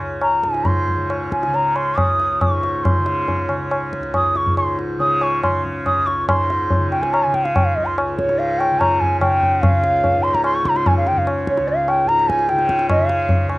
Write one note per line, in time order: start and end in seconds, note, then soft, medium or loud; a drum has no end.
0.00 1.97 C#2 medium
0.00 0.44 G#2 medium
0.00 0.96 C#3 medium
0.00 tabla na medium
0.21 0.46 A#5 medium
0.21 tabla na medium
0.43 2.47 G#2 medium
0.43 0.69 G#5 medium
0.43 tabla ke medium
0.54 tabla te medium
0.65 1.11 C6 medium
0.65 tabla na medium
0.65 tabla ge medium
0.88 tabla ge medium
0.96 1.47 C#3 medium
1.10 tabla na medium
1.32 1.56 G#5 medium
1.32 tabla ke medium
1.43 2.97 C#3 medium
1.43 tabla te medium
1.54 1.77 A#5 medium
1.54 tabla tin medium
1.76 1.99 C6 medium
1.76 tabla na medium
1.97 3.98 C#2 medium
1.97 2.43 D#6 loud
1.97 tabla na medium
1.97 tabla ge medium
2.20 tabla te medium
2.41 2.85 C#6 medium
2.41 tabla na medium
2.41 tabla ge medium
2.47 4.48 G#2 medium
2.63 tabla te medium
2.84 3.49 C6 medium
2.84 tabla na medium
2.84 tabla ge medium
2.97 3.48 C#3 medium
3.06 tabla te medium
3.28 tabla tin medium
3.28 tabla ge medium
3.48 4.98 C#3 medium
3.48 tabla na medium
3.71 tabla na medium
3.93 tabla ke medium
3.98 5.96 C#2 medium
4.03 tabla te medium
4.14 4.38 D#6 medium
4.14 tabla na medium
4.14 tabla ge medium
4.35 4.57 C#6 medium
4.35 tabla te medium
4.46 6.28 G#2 medium
4.46 tabla ge medium
4.57 4.78 C6 medium
4.57 tabla na medium
4.79 tabla te medium
4.98 5.47 C#3 medium
4.98 5.24 D#6 medium
4.98 tabla tin medium
5.21 5.43 C#6 medium
5.21 tabla na medium
5.43 6.77 C#3 medium
5.43 5.63 C6 medium
5.43 tabla na medium
5.43 tabla ge medium
5.65 tabla ge medium
5.86 6.08 D#6 medium
5.86 tabla na medium
5.86 tabla ge medium
5.96 7.73 C#2 medium
6.06 6.28 C#6 medium
6.06 tabla te medium
6.29 8.22 G#2 medium
6.29 6.88 C6 medium
6.29 tabla na loud
6.29 tabla ge medium
6.50 tabla te medium
6.70 tabla tin medium
6.70 tabla ge medium
6.77 7.26 C#3 medium
6.91 7.04 G5 medium
6.91 tabla na medium
7.02 7.15 G#5 medium
7.02 tabla ke medium
7.13 7.25 A#5 loud
7.13 tabla na medium
7.23 8.71 C#3 medium
7.23 7.36 G#5 medium
7.34 7.46 G5 medium
7.34 tabla ke medium
7.45 7.57 F5 medium
7.45 tabla te medium
7.55 7.66 G5 medium
7.55 tabla na medium
7.55 tabla ge medium
7.65 7.77 F5 medium
7.73 9.66 C#2 medium
7.73 7.87 D#5 medium
7.73 tabla ge medium
7.85 7.96 C6 medium
7.98 tabla na medium
8.16 8.40 C#5 medium
8.16 tabla ke medium
8.23 10.13 G#2 medium
8.29 tabla te medium
8.39 8.60 F5 medium
8.39 tabla tin medium
8.59 8.81 G5 medium
8.59 tabla na medium
8.71 9.19 C#3 medium
8.80 9.02 A#5 loud
8.80 tabla na medium
8.80 tabla ge medium
9.00 9.20 G#5 medium
9.00 tabla ge medium
9.19 10.63 C#3 medium
9.19 9.63 G5 loud
9.19 tabla na medium
9.19 tabla ge medium
9.42 tabla ge medium
9.62 10.24 F5 loud
9.62 tabla na loud
9.62 tabla ge loud
9.67 11.57 C#2 medium
9.83 tabla te medium
10.04 tabla tin medium
10.04 tabla ge medium
10.14 12.04 G#2 medium
10.23 10.36 C6 loud
10.23 tabla na medium
10.34 10.44 A#5 loud
10.34 tabla ke medium
10.44 10.56 C6 loud
10.44 tabla na medium
10.55 10.68 C#6 loud
10.63 11.10 C#3 medium
10.63 10.78 A#5 loud
10.63 tabla ke medium
10.76 10.89 C6 loud
10.76 tabla te medium
10.86 10.97 G#5 loud
10.86 tabla na medium
10.86 tabla ge medium
10.97 11.09 F5 medium
11.07 12.52 C#3 medium
11.07 11.20 G5 medium
11.07 tabla te medium
11.17 11.28 F5 medium
11.17 tabla ge medium
11.27 tabla na medium
11.47 11.70 C#5 medium
11.47 tabla ke medium
11.57 13.43 C#2 medium
11.57 tabla te medium
11.68 11.90 F5 medium
11.68 tabla tin medium
11.88 12.09 G5 loud
11.88 tabla na medium
12.04 13.59 G#2 medium
12.04 12.30 A#5 loud
12.09 tabla te medium
12.19 tabla te medium
12.28 12.50 G#5 loud
12.28 tabla ke medium
12.39 tabla te medium
12.49 12.97 C#3 medium
12.49 12.89 G5 medium
12.49 tabla te medium
12.59 tabla te medium
12.69 tabla ke medium
12.79 tabla te medium
12.90 13.46 F5 medium
12.90 tabla na loud
12.90 tabla ge loud
12.97 13.59 C#3 medium
13.09 tabla te medium
13.29 tabla tin medium
13.29 tabla ge medium
13.44 13.59 C#2 medium
13.49 tabla na medium